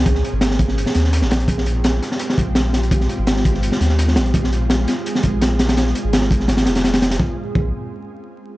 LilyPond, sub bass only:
\new Staff \with { instrumentName = "Sub bass" } { \clef bass \time 4/4 \key bes \dorian \tempo 4 = 168 des,8 r16 aes,,4. r16 ees,8. aes,,16 bes,,8 | bes,,4. r4 bes,,4.~ | bes,,8 r16 aes,,4. r16 ees,4 bes,,8 | bes,,4. r4 bes,,4.~ |
bes,,8 r16 aes,,4~ aes,,16 aes,,8 f,,4. | bes,,16 r8. bes,,8 r2 r8 | }